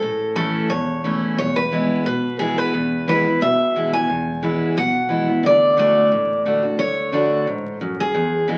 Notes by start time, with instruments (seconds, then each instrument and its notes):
Already playing: steel-string acoustic guitar A4
0.01 upright bass A1, steel-string acoustic guitar A2
0.35 steel-string acoustic guitar E3 A3 C#4 E4 A4
0.70 upright bass E1, steel-string acoustic guitar E2 C#5
1.04 steel-string acoustic guitar E3 A3 C#4 E4
1.37 upright bass E1, steel-string acoustic guitar E2 C#5
1.56 steel-string acoustic guitar B4
1.72 steel-string acoustic guitar E3 G#3 B3 E4
2.05 upright bass B1, steel-string acoustic guitar B2 B4
2.39 steel-string acoustic guitar E3 G#3 B3 E4 G#4
2.58 steel-string acoustic guitar B4
2.73 upright bass E1, steel-string acoustic guitar E2
3.08 steel-string acoustic guitar E3 G#3 B3 E4 B4
3.26 steel-string acoustic guitar B3 E4
3.40 upright bass B1, steel-string acoustic guitar B2 E5
3.76 steel-string acoustic guitar E3 G#3 B3 E4
3.93 steel-string acoustic guitar B3 E4 G#5
4.08 upright bass E1, steel-string acoustic guitar E2
4.43 steel-string acoustic guitar E3 G#3 B3 E4
4.76 upright bass B1, steel-string acoustic guitar B2 F#5
5.09 steel-string acoustic guitar E3 G#3 B3 E4
5.27 steel-string acoustic guitar B3 E4
5.43 upright bass D2, steel-string acoustic guitar D3 D5
5.77 steel-string acoustic guitar D3 A3 D4 F#4 D5
6.11 upright bass A1, steel-string acoustic guitar A2
6.45 steel-string acoustic guitar D3 A3 D4 F#4
6.63 steel-string acoustic guitar D4 F#4
6.79 upright bass D2, steel-string acoustic guitar D3 C#5
7.12 steel-string acoustic guitar D3 A3 D4 F#4
7.47 upright bass A1, steel-string acoustic guitar G#2
7.81 steel-string acoustic guitar F#2
8.00 steel-string acoustic guitar G#4
8.15 steel-string acoustic guitar E2, upright bass E2
8.48 steel-string acoustic guitar E3 G#3 B3 E4